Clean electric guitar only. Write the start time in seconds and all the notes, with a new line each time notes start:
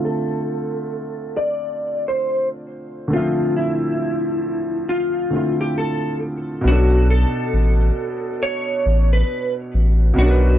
0.05 A4
1.37 D5
2.08 C5
3.13 F4
3.56 E4
4.89 F4
5.61 G4
5.78 A4
6.68 F#4
7.10 A4
8.43 C#5
9.13 B4
10.19 F#4